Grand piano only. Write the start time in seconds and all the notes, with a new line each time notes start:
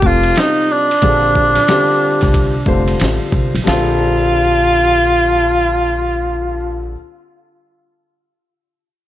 0.03 C3 G3 C4 F4 A4
1.02 D3 G3 C4 F4 G#4
1.09 A4
1.68 D3 G3 C4 F4 G4
2.67 D3 G3 C4 F4 C5
3.64 D3 G3 C4 F4
3.68 A4